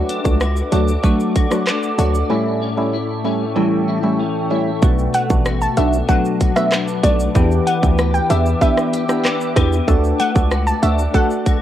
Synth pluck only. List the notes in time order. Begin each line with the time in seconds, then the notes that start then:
5.14 F#5
5.62 A5
5.77 E5
6.09 F#5
6.56 E5
7.04 D5
7.67 F#5
8.14 G5
8.30 E5
8.62 E5
10.20 F#5
10.67 A5
10.83 E5
11.14 F#5